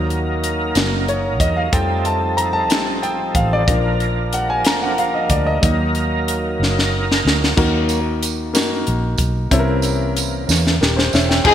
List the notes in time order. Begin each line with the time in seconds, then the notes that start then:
Already playing: D#2 F#3 A#3 D#4 A#4
0.10 closed hi-hat
0.44 closed hi-hat
0.75 F#1 F#3 A#3 D#4, snare, closed hi-hat
1.08 C#5, closed hi-hat
1.40 E2 D#5, kick, closed hi-hat
1.57 F5
1.72 F2 F3 G3 A3 C4 D#4 A4 G5, kick, closed hi-hat
2.05 A5, closed hi-hat
2.37 A#5, closed hi-hat
2.53 A5
2.70 A1 G3 A3 D#4, snare, closed hi-hat
3.03 G5, closed hi-hat
3.35 A1 F5, kick, closed hi-hat
3.53 D5
3.67 A#1 F3 A#3 D4 A#4, kick, closed hi-hat
4.00 closed hi-hat
4.33 F#5, closed hi-hat
4.50 G#5
4.65 F1 A#5, snare, closed hi-hat
4.83 F#5
4.98 F5, closed hi-hat
5.14 D#5
5.30 D2 D5, kick, closed hi-hat
5.47 D#5
5.61 D#2 F#3 A#3 D#4 A#4, kick, closed hi-hat
5.95 closed hi-hat
6.28 closed hi-hat
6.60 F#1, snare
6.79 snare
7.12 snare
7.25 D2, snare
7.44 snare
7.57 D#2 D#3 F#3 A#3 D#4 F#4 A#4, kick, crash
7.89 closed hi-hat, tambourine
8.23 closed hi-hat, tambourine
8.54 F#2 A#3 D#4 F#4 A#4, snare, closed hi-hat, tambourine
8.87 A#1, closed hi-hat
9.18 B1, kick, closed hi-hat, tambourine
9.51 C2 C3 E3 A#3 C4 C#4 E4 A4, kick, closed hi-hat
9.59 A#4
9.82 closed hi-hat, tambourine
10.17 closed hi-hat, tambourine
10.47 E2 C#3 E3 A#3, snare, tambourine
10.67 snare
10.81 D#1 G4 A#4, snare
10.96 C5, snare
11.13 E1 C#5 E5, snare, tambourine
11.29 E5 G5, snare
11.44 F1 G#3 C4 D#4 F4 G#4 C5 G5, kick, crash